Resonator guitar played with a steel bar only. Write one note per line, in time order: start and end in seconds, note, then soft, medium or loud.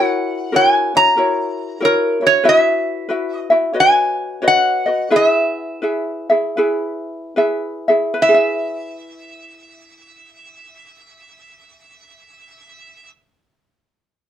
0.00 0.56 F#5 loud
0.56 0.96 G#5 loud
0.97 1.86 A#5 loud
1.85 2.25 A#4 loud
2.27 2.49 C#5 medium
2.49 3.36 E5 loud
3.36 3.81 D#5 loud
3.80 4.47 G#5 loud
4.48 5.16 F#5 loud
5.16 7.87 E5 medium
8.22 13.10 E5 medium